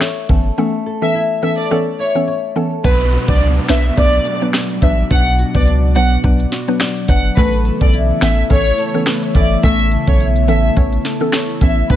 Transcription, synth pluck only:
0.29 0.47 E3 medium
0.29 0.47 B3 medium
0.29 0.47 C#4 medium
0.29 0.47 A4 medium
0.58 0.75 E3 loud
0.58 0.75 B3 medium
0.58 0.75 C#4 medium
0.58 0.75 A4 loud
1.02 1.40 E3 medium
1.02 1.40 B3 medium
1.02 1.40 C#4 medium
1.02 1.40 A4 medium
1.42 1.69 E3 medium
1.42 1.69 B3 medium
1.42 1.69 C#4 medium
1.42 1.69 A4 medium
1.71 1.88 E3 medium
1.71 1.88 B3 medium
1.71 1.88 C#4 medium
1.71 1.88 A4 loud
2.15 2.29 E3 medium
2.15 2.29 B3 medium
2.15 2.29 C#4 medium
2.15 2.30 A4 medium
2.56 2.73 E3 medium
2.56 2.73 B3 medium
2.56 2.73 C#4 medium
2.56 2.73 A4 medium
2.84 3.01 F#3 loud
2.84 3.01 B3 medium
2.84 3.02 D4 medium
2.84 3.02 B4 loud
3.28 3.66 F#3 medium
3.28 3.66 B3 medium
3.28 3.66 D4 medium
3.28 3.66 B4 medium
3.69 3.95 F#3 medium
3.69 3.95 B3 medium
3.69 3.96 D4 medium
3.69 3.96 B4 loud
3.97 4.14 F#3 medium
3.97 4.15 B3 medium
3.97 4.15 D4 medium
3.97 4.15 B4 loud
4.41 4.56 F#3 medium
4.41 4.56 B3 medium
4.41 4.56 D4 medium
4.41 4.56 B4 medium
4.82 4.99 F#3 medium
4.82 5.00 B3 medium
4.82 5.00 D4 medium
4.82 5.00 B4 medium
5.11 5.28 F#3 loud
5.11 5.28 B3 medium
5.11 5.28 D4 medium
5.11 5.28 B4 loud
5.55 5.92 F#3 medium
5.55 5.93 B3 medium
5.55 5.93 D4 medium
5.55 5.93 B4 medium
5.95 6.22 F#3 medium
5.95 6.22 B3 medium
5.95 6.22 D4 medium
5.95 6.22 B4 medium
6.24 6.41 F#3 medium
6.24 6.41 B3 medium
6.24 6.41 D4 medium
6.24 6.41 B4 loud
6.68 6.82 F#3 medium
6.68 6.82 B3 medium
6.68 6.82 D4 medium
6.68 6.82 B4 medium
7.09 7.26 F#3 medium
7.09 7.26 B3 medium
7.09 7.26 D4 medium
7.09 7.26 B4 medium
7.37 7.54 E3 loud
7.37 7.54 B3 medium
7.37 7.54 C#4 medium
7.37 7.54 A4 loud
7.81 8.19 E3 medium
7.81 8.19 B3 medium
7.81 8.19 C#4 medium
7.81 8.19 A4 medium
8.22 8.48 E3 medium
8.22 8.48 B3 medium
8.22 8.48 C#4 medium
8.22 8.48 A4 medium
8.50 8.67 E3 medium
8.50 8.67 B3 medium
8.50 8.68 C#4 medium
8.50 8.68 A4 loud
8.94 9.08 E3 medium
8.94 9.08 B3 medium
8.94 9.09 C#4 medium
8.94 9.09 A4 medium
9.35 9.52 E3 medium
9.35 9.52 B3 medium
9.35 9.52 C#4 medium
9.35 9.53 A4 medium
9.63 9.80 E3 loud
9.63 9.81 B3 medium
9.63 9.81 C#4 medium
9.63 9.81 A4 loud
10.07 10.45 E3 medium
10.07 10.45 B3 medium
10.07 10.45 C#4 medium
10.07 10.46 A4 medium
10.48 10.74 E3 medium
10.48 10.75 B3 medium
10.48 10.75 C#4 medium
10.48 10.75 A4 medium
10.76 10.94 E3 loud
10.76 10.94 B3 medium
10.76 10.94 C#4 medium
10.76 10.94 A4 loud
11.21 11.35 E3 medium
11.21 11.35 B3 medium
11.21 11.35 C#4 medium
11.21 11.35 A4 medium
11.61 11.79 E3 medium
11.61 11.79 B3 medium
11.61 11.79 C#4 medium
11.61 11.79 A4 medium
11.90 11.96 F#3 loud
11.90 11.96 B3 medium
11.90 11.96 D4 medium
11.90 11.96 B4 loud

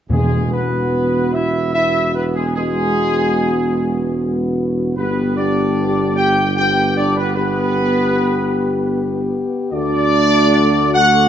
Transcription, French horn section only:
0.11 1.70 B3 medium
0.11 1.70 F#4 medium
1.75 2.51 B3 medium
1.75 2.52 F#4 medium
2.55 4.93 B3 medium
2.55 4.93 F#4 medium
4.97 6.39 B3 medium
4.97 6.39 G4 medium
6.56 7.32 B3 medium
6.56 7.32 G4 medium
7.36 9.68 B3 medium
7.36 9.68 G4 medium
9.72 11.29 A3 medium
9.72 11.29 F#4 loud

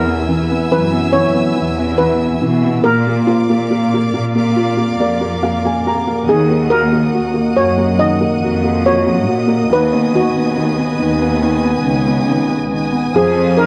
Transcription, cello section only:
0.00 0.45 E2 medium
0.71 1.31 F#2 medium
1.57 2.38 E2 medium
2.42 2.82 B2 medium
2.85 3.45 A#2 loud
3.49 4.09 A#2 medium
4.12 4.95 A#2 medium
4.98 5.80 F2 medium
6.27 7.30 D#2 medium
7.56 8.16 F#2 medium
8.41 9.27 F2 medium
9.27 9.67 A#2 medium
9.71 10.31 D#2 medium
10.35 10.95 D#2 medium
11.00 11.81 D#2 medium
11.85 12.67 C#2 medium
13.14 13.66 F2 medium

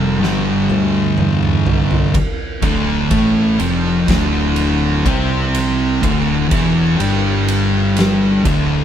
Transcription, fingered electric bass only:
0.00 0.21 F1 medium
0.21 0.67 G1 loud
0.70 1.16 D2 medium
1.19 1.64 E2 medium
1.66 2.12 C2 medium
2.62 3.08 D1 loud
3.11 3.56 A1 loud
3.60 4.05 F1 medium
4.08 5.01 D1 loud
5.06 5.99 C2 loud
6.04 6.48 D1 loud
6.52 6.96 E1 loud
7.01 8.42 G1 loud
8.45 8.84 D1 loud

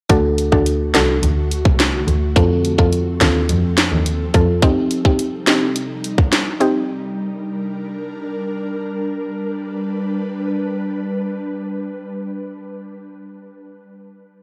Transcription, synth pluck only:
0.09 0.49 D4 loud
0.09 0.49 F#4 medium
0.09 0.49 A4 loud
0.52 0.71 D4 medium
0.52 0.71 F#4 medium
0.52 0.71 A4 medium
0.94 1.14 D4 medium
0.94 1.14 F#4 medium
0.94 1.14 A4 medium
2.36 2.75 C4 medium
2.36 2.75 F4 medium
2.36 2.75 A4 loud
2.78 2.97 C4 medium
2.78 2.98 F4 medium
2.78 2.98 A4 medium
3.21 3.40 C4 medium
3.21 3.40 F4 medium
3.21 3.40 A4 medium
4.34 4.53 C4 medium
4.34 4.53 F4 medium
4.34 4.54 A4 medium
4.62 5.01 C4 loud
4.62 5.02 D#4 medium
4.62 5.02 G4 loud
5.05 5.24 C4 medium
5.05 5.24 D#4 medium
5.05 5.24 G4 medium
5.47 5.66 C4 medium
5.47 5.67 D#4 medium
5.47 5.67 G4 medium
6.60 6.80 C4 medium
6.60 6.80 D#4 medium
6.60 6.80 G4 medium

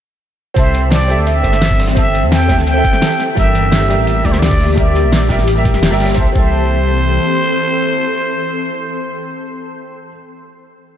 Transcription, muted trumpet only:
0.56 0.89 C5 medium
0.91 1.28 D5 loud
1.27 1.96 E5 loud
1.97 2.33 E5 loud
2.32 2.66 G5 loud
2.67 3.39 G5 loud
3.37 4.07 E5 loud
4.08 4.26 E5 loud
4.25 4.33 D5 loud
4.32 4.41 C5 medium
4.39 4.77 D5 loud
4.78 5.27 D5 medium
6.18 6.28 C5 medium
6.35 9.75 C5 loud

